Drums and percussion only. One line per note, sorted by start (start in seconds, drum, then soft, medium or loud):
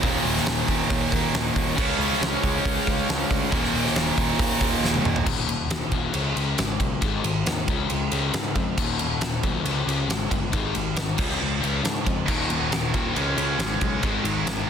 0.03 kick loud
0.03 open hi-hat medium
0.25 open hi-hat medium
0.37 snare soft
0.46 snare loud
0.46 open hi-hat medium
0.68 kick medium
0.68 open hi-hat medium
0.90 kick loud
0.90 open hi-hat medium
1.12 kick medium
1.12 open hi-hat medium
1.35 snare loud
1.56 kick medium
1.56 open hi-hat medium
1.78 kick loud
1.78 crash loud
2.01 open hi-hat medium
2.13 snare soft
2.23 snare loud
2.43 kick medium
2.43 open hi-hat medium
2.65 kick loud
2.65 open hi-hat loud
2.87 kick medium
2.87 open hi-hat medium
3.09 snare loud
3.09 open hi-hat medium
3.31 kick medium
3.31 open hi-hat medium
3.52 kick loud
3.52 open hi-hat loud
3.64 snare soft
3.75 open hi-hat medium
3.86 snare soft
3.96 snare loud
3.96 open hi-hat medium
4.18 kick medium
4.18 open hi-hat medium
4.39 kick loud
4.39 open hi-hat loud
4.61 kick loud
4.61 open hi-hat medium
4.84 snare medium
4.94 high tom medium
5.05 mid tom loud
5.16 floor tom loud
5.26 kick medium
5.26 crash loud
5.49 ride medium
5.70 snare loud
5.70 ride medium
5.92 kick medium
5.92 ride medium
6.14 ride loud
6.37 ride medium
6.58 snare loud
6.58 ride medium
6.80 kick medium
6.80 ride medium
7.02 kick loud
7.02 ride loud
7.24 ride medium
7.46 snare loud
7.46 ride medium
7.68 kick loud
7.68 ride medium
7.90 ride loud
8.12 ride medium
8.34 snare loud
8.34 ride medium
8.55 kick medium
8.55 ride medium
8.78 kick loud
8.78 crash loud
8.99 ride medium
9.21 snare loud
9.21 ride medium
9.43 kick medium
9.43 ride medium
9.66 ride medium
9.89 ride medium
10.10 snare loud
10.10 ride medium
10.31 kick medium
10.31 ride medium
10.53 kick loud
10.53 ride loud
10.75 ride medium
10.96 snare loud
10.96 ride medium
11.18 kick loud
11.18 crash loud
11.30 snare soft
11.64 ride medium
11.85 snare loud
11.85 ride loud
12.06 kick medium
12.06 ride medium
12.28 kick loud
12.28 crash medium
12.50 ride medium
12.72 snare loud
12.72 ride medium
12.94 kick medium
12.94 ride medium
13.16 ride medium
13.38 ride medium
13.59 snare loud
13.59 ride medium
13.81 kick medium
13.81 ride medium
14.03 kick loud
14.03 ride loud
14.25 ride medium
14.47 snare loud
14.47 ride loud